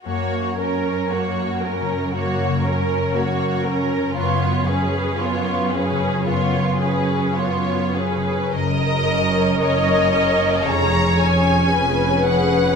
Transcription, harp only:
X:1
M:4/4
L:1/16
Q:1/4=56
K:F#
V:1 name="Harp"
(3F,,2 C2 A2 (3C2 F2 C,2 (3C2 C,2 A2 (3C2 F2 C,2 | (3F,,2 C2 B2 (3C2 E2 C,2 (3F,,2 C2 B2 (3C2 E2 C,2 | F,, C A c f c A C E,, C c G g c G C |]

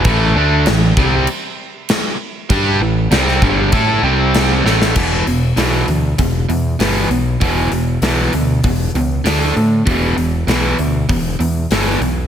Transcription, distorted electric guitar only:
X:1
M:4/4
L:1/8
Q:1/4=98
K:Em
V:1 name="Distorted electric guitar" clef=bass
[A,,E,A,] [D,A,D] [A,,E,] [C,G,C] z4 | [G,DG] [A,,E,] [C,G,C] [G,,D,G,] [A,EA] [C,G,C]2 [A,,E,A,] | [E,,B,,E,] [E,,B,,] [E,,B,,E,] [E,,B,,] [E,,B,,] [E,,B,,] [E,,B,,E,] [E,,B,,] | [E,,B,,E,] [E,,B,,] [E,,B,,E,] [E,,B,,] [E,,B,,] [E,,B,,] [D,A,D] [D,A,] |
[E,,B,,E,] [E,,B,,] [E,,B,,E,] [E,,B,,] [E,,B,,] [E,,B,,] [E,,B,,E,] [E,,B,,] |]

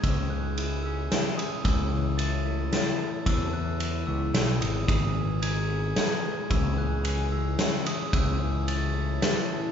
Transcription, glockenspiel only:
X:1
M:3/4
L:1/8
Q:1/4=111
K:C#m
V:1 name="Glockenspiel"
e' f'2 e'2 d' | e'2 a'2 a'2 | e' f'2 e'2 d' | d'2 g'2 g'2 |
e' f'2 e'2 d' | e'2 a'2 a'2 |]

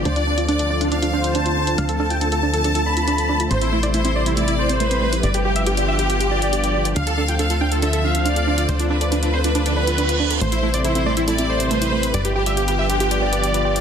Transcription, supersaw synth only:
X:1
M:4/4
L:1/16
Q:1/4=139
K:Ddor
V:1 name="Supersaw synth"
c D D d D D d D D D c4- c z | f A A g A A a A A A b4- b z | c E E d E E d E E E c4- c z | d G G e G G e G G G d4- d z |
f A A g A A g A A A f4- f z | c D D d D D c D D D B4- B z | c E E d E E d E E E c4- c z | d G G e G G e G G G d4- d z |]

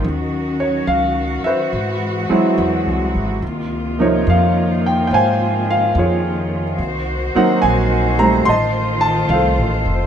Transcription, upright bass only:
X:1
M:4/4
L:1/8
Q:"Swing" 1/4=72
K:Dblyd
V:1 name="Upright bass" clef=bass
E,,2 D,, z A,, z (3=E,, C,, A,,, | D,,2 F,,2 A,,2 F,,2 | C,, z B,,,2 =A,,,2 (3C,, A,,, F,,, |]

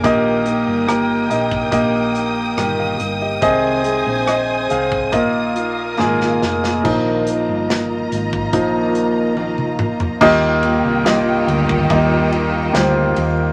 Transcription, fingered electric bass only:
X:1
M:4/4
L:1/16
Q:1/4=71
K:Eb
V:1 name="Fingered electric bass" clef=bass
B,,,3 G,,,3 B,,,2 B,,,4 G,,,2 G,,,2 | C,,3 B,,,3 C,,2 B,,,4 A,,,2 F,,,2 | B,,,3 G,,,3 A,,,2 B,,,8 | E,,3 C,,3 D,,2 E,,4 D,,2 E,,2 |]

